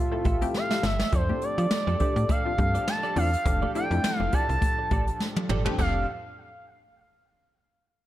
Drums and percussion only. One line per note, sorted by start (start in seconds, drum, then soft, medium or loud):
0.25 kick medium
0.25 closed hi-hat medium
0.25 high conga medium
0.42 closed hi-hat medium
0.54 snare medium
0.70 snare medium
0.70 high conga medium
0.83 snare loud
0.83 low conga loud
0.99 snare medium
1.12 kick loud
1.12 closed hi-hat medium
1.12 muted conga soft
1.12 low conga medium
1.30 high conga medium
1.42 closed hi-hat medium
1.58 closed hi-hat soft
1.71 snare loud
1.71 closed hi-hat medium
1.71 muted conga soft
1.71 high conga medium
1.87 closed hi-hat soft
1.87 high conga medium
2.00 kick medium
2.00 closed hi-hat medium
2.00 low conga medium
2.17 closed hi-hat medium
2.29 kick loud
2.29 closed hi-hat loud
2.29 muted conga soft
2.29 high conga medium
2.58 kick loud
2.58 closed hi-hat medium
2.58 high conga medium
2.75 closed hi-hat medium
2.88 snare loud
2.88 closed hi-hat medium
3.03 closed hi-hat soft
3.03 muted conga soft
3.16 open hi-hat medium
3.16 low conga loud
3.33 closed hi-hat medium
3.46 kick loud
3.46 closed hi-hat medium
3.46 muted conga soft
3.46 low conga medium
3.63 muted conga soft
3.63 high conga medium
3.75 closed hi-hat medium
3.91 closed hi-hat soft
4.04 snare loud
4.04 closed hi-hat loud
4.04 muted conga soft
4.04 high conga medium
4.20 muted conga soft
4.20 high conga medium
4.33 kick medium
4.33 closed hi-hat medium
4.33 low conga medium
4.49 closed hi-hat medium
4.61 kick loud
4.61 closed hi-hat loud
4.61 high conga medium
4.91 kick medium
4.91 closed hi-hat medium
4.91 high conga medium
5.07 closed hi-hat medium
5.20 snare medium
5.20 muted conga soft
5.36 high tom medium
5.36 muted conga soft
5.49 mid tom medium
5.49 low conga medium
5.66 floor tom loud
5.78 kick loud
5.78 splash medium
5.78 high conga medium